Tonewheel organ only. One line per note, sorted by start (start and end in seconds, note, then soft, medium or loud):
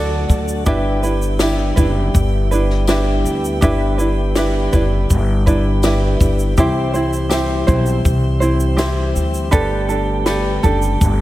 0.00 6.54 D3 medium
0.00 0.64 F#3 medium
0.00 0.64 A3 medium
0.00 0.65 F#4 medium
0.00 0.64 A4 medium
0.67 11.21 G3 medium
0.67 6.55 B3 medium
0.67 9.49 E4 medium
0.67 11.21 G4 medium
6.57 9.50 E3 medium
6.57 9.50 C4 medium
9.53 11.21 D3 medium
9.53 11.21 A3 medium
9.53 11.21 B3 medium